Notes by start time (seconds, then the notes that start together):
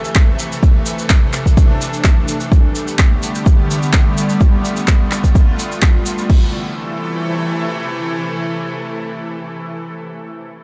Already playing: C3 E3 A3 A4 E5
0.05 cabasa
0.15 kick, clap, cabasa
0.39 cabasa
0.52 cabasa
0.63 D4, kick, cabasa
0.86 cabasa
0.99 cabasa
1.10 kick, clap, cabasa
1.33 clap, cabasa
1.46 kick, cabasa
1.57 kick, cabasa
1.81 cabasa
1.93 cabasa
2.04 kick, clap, cabasa
2.28 cabasa
2.40 cabasa
2.52 D3 G3 A3 B3 G4, kick, cabasa
2.75 cabasa
2.88 cabasa
2.99 kick, clap, cabasa
3.23 cabasa
3.35 cabasa
3.46 kick, cabasa
3.71 cabasa
3.83 cabasa
3.93 kick, clap, cabasa
4.18 cabasa
4.29 cabasa
4.41 F4, kick, cabasa
4.65 cabasa
4.76 cabasa
4.87 kick, clap, cabasa
5.11 clap, cabasa
5.24 kick, cabasa
5.35 kick, cabasa
5.59 cabasa
5.72 cabasa
5.82 kick, clap, cabasa
6.06 cabasa
6.18 cabasa
6.30 C3 E3 A3 E4 A4, kick, crash